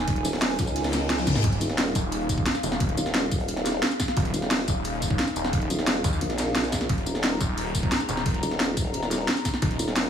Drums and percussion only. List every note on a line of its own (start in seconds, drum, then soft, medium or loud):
0.08 kick loud
0.08 closed hi-hat medium
0.08 closed hi-hat loud
0.16 closed hi-hat soft
0.24 snare loud
0.24 closed hi-hat medium
0.24 open hi-hat medium
0.24 tambourine medium
0.33 snare loud
0.33 snare soft
0.33 open hi-hat medium
0.41 snare loud
0.41 closed hi-hat loud
0.41 open hi-hat medium
0.49 snare loud
0.49 open hi-hat medium
0.59 kick loud
0.59 snare loud
0.59 closed hi-hat medium
0.59 tambourine medium
0.67 tambourine soft
0.76 snare loud
0.76 closed hi-hat loud
0.76 open hi-hat medium
0.84 snare medium
0.84 snare soft
0.84 closed hi-hat soft
0.84 open hi-hat medium
0.89 snare medium
0.89 open hi-hat medium
0.93 snare soft
0.93 snare loud
0.93 closed hi-hat medium
0.93 open hi-hat medium
0.93 tambourine medium
1.10 snare loud
1.10 closed hi-hat medium
1.18 snare loud
1.18 open hi-hat medium
1.18 high tom medium
1.18 tambourine soft
1.27 kick medium
1.27 snare medium
1.27 closed hi-hat medium
1.27 mid tom medium
1.27 tambourine medium
1.35 snare soft
1.35 closed hi-hat medium
1.35 mid tom medium
1.44 kick loud
1.44 closed hi-hat medium
1.44 closed hi-hat loud
1.52 closed hi-hat soft
1.61 closed hi-hat medium
1.61 tambourine medium
1.69 snare soft
1.78 snare loud
1.78 closed hi-hat loud
1.78 open hi-hat medium
1.95 kick loud
1.95 closed hi-hat medium
1.95 tambourine medium
2.12 closed hi-hat medium
2.21 closed hi-hat soft
2.29 kick medium
2.29 closed hi-hat medium
2.29 tambourine medium
2.38 kick loud
2.46 snare loud
2.46 closed hi-hat medium
2.46 closed hi-hat loud
2.55 snare soft
2.55 closed hi-hat soft
2.55 tambourine soft
2.63 closed hi-hat medium
2.63 tambourine medium
2.71 snare soft
2.71 snare medium
2.80 kick loud
2.80 closed hi-hat loud
2.80 closed hi-hat medium
2.89 closed hi-hat soft
2.97 closed hi-hat medium
2.97 tambourine medium
3.06 snare medium
3.06 snare soft
3.14 snare loud
3.14 closed hi-hat loud
3.31 kick loud
3.31 closed hi-hat medium
3.31 tambourine medium
3.40 closed hi-hat soft
3.48 closed hi-hat medium
3.57 snare soft
3.65 snare soft
3.65 closed hi-hat medium
3.65 tambourine medium
3.73 snare medium
3.82 snare loud
3.82 closed hi-hat medium
3.91 tambourine soft
4.00 kick medium
4.00 snare medium
4.00 closed hi-hat medium
4.00 tambourine medium
4.08 snare soft
4.16 kick loud
4.16 closed hi-hat medium
4.25 closed hi-hat soft
4.34 closed hi-hat medium
4.34 tambourine medium
4.42 snare soft
4.50 snare loud
4.50 closed hi-hat medium
4.50 open hi-hat medium
4.68 kick loud
4.68 closed hi-hat medium
4.68 tambourine medium
4.84 closed hi-hat medium
4.93 closed hi-hat soft
5.02 kick medium
5.02 closed hi-hat medium
5.02 tambourine medium
5.10 kick loud
5.19 snare loud
5.19 closed hi-hat medium
5.28 snare soft
5.28 tambourine soft
5.36 closed hi-hat medium
5.36 tambourine medium
5.45 snare soft
5.53 kick loud
5.53 closed hi-hat medium
5.62 closed hi-hat soft
5.70 closed hi-hat medium
5.70 tambourine medium
5.78 snare medium
5.78 snare soft
5.87 snare loud
5.87 closed hi-hat medium
6.04 kick loud
6.04 closed hi-hat medium
6.04 tambourine medium
6.13 closed hi-hat soft
6.13 tambourine soft
6.21 closed hi-hat medium
6.30 snare soft
6.30 closed hi-hat soft
6.38 snare soft
6.38 closed hi-hat medium
6.38 tambourine medium
6.47 snare soft
6.55 snare loud
6.55 closed hi-hat medium
6.64 closed hi-hat soft
6.64 tambourine soft
6.72 kick medium
6.72 snare medium
6.72 closed hi-hat medium
6.72 tambourine medium
6.81 snare soft
6.89 kick loud
6.89 closed hi-hat medium
6.98 closed hi-hat soft
7.06 closed hi-hat medium
7.06 tambourine medium
7.15 snare soft
7.23 snare loud
7.23 closed hi-hat medium
7.23 open hi-hat medium
7.41 kick loud
7.41 closed hi-hat medium
7.41 tambourine medium
7.58 closed hi-hat medium
7.66 closed hi-hat soft
7.75 kick medium
7.75 closed hi-hat medium
7.75 tambourine medium
7.83 kick loud
7.92 snare loud
7.92 closed hi-hat medium
8.00 snare soft
8.00 closed hi-hat soft
8.00 tambourine soft
8.09 closed hi-hat medium
8.09 tambourine medium
8.17 snare soft
8.26 kick loud
8.26 closed hi-hat medium
8.26 closed hi-hat loud
8.34 closed hi-hat soft
8.43 closed hi-hat medium
8.43 tambourine medium
8.51 snare medium
8.51 snare soft
8.59 snare loud
8.59 closed hi-hat medium
8.77 kick loud
8.77 closed hi-hat medium
8.77 tambourine medium
8.85 closed hi-hat soft
8.93 closed hi-hat medium
9.03 snare soft
9.11 snare soft
9.11 closed hi-hat medium
9.11 tambourine medium
9.20 snare medium
9.28 snare loud
9.28 closed hi-hat loud
9.28 closed hi-hat medium
9.37 tambourine soft
9.45 kick medium
9.45 snare medium
9.45 closed hi-hat medium
9.45 tambourine medium
9.54 snare soft
9.62 kick loud
9.62 closed hi-hat loud
9.62 closed hi-hat medium
9.71 closed hi-hat soft
9.79 closed hi-hat medium
9.79 tambourine medium
9.87 snare soft
9.96 snare loud
9.96 closed hi-hat medium
9.96 open hi-hat medium